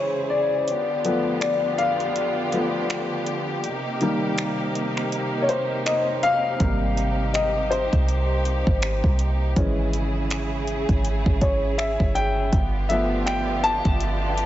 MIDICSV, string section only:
0, 0, Header, 1, 2, 480
1, 0, Start_track
1, 0, Tempo, 740741
1, 439, Time_signature, 4, 2, 24, 8
1, 9368, End_track
2, 0, Start_track
2, 0, Title_t, "String section"
2, 0, Program_c, 0, 48
2, 0, Note_on_c, 0, 49, 76
2, 0, Note_on_c, 0, 64, 71
2, 0, Note_on_c, 0, 68, 84
2, 419, Note_off_c, 0, 49, 0
2, 420, Note_off_c, 0, 64, 0
2, 420, Note_off_c, 0, 68, 0
2, 438, Note_on_c, 0, 50, 81
2, 439, Note_on_c, 0, 59, 72
2, 439, Note_on_c, 0, 65, 69
2, 440, Note_on_c, 0, 67, 82
2, 2339, Note_off_c, 0, 50, 0
2, 2339, Note_off_c, 0, 59, 0
2, 2339, Note_off_c, 0, 65, 0
2, 2356, Note_on_c, 0, 58, 73
2, 2357, Note_on_c, 0, 63, 71
2, 2358, Note_on_c, 0, 48, 79
2, 4253, Note_off_c, 0, 67, 0
2, 4258, Note_off_c, 0, 58, 0
2, 4284, Note_on_c, 0, 67, 84
2, 6172, Note_off_c, 0, 48, 0
2, 6172, Note_off_c, 0, 63, 0
2, 6182, Note_off_c, 0, 67, 0
2, 6199, Note_on_c, 0, 49, 77
2, 6200, Note_on_c, 0, 64, 70
2, 6200, Note_on_c, 0, 68, 84
2, 8100, Note_off_c, 0, 49, 0
2, 8100, Note_off_c, 0, 64, 0
2, 8100, Note_off_c, 0, 68, 0
2, 8122, Note_on_c, 0, 67, 87
2, 8123, Note_on_c, 0, 50, 77
2, 8123, Note_on_c, 0, 59, 69
2, 8123, Note_on_c, 0, 65, 76
2, 9368, Note_off_c, 0, 50, 0
2, 9368, Note_off_c, 0, 59, 0
2, 9368, Note_off_c, 0, 65, 0
2, 9368, Note_off_c, 0, 67, 0
2, 9368, End_track
0, 0, End_of_file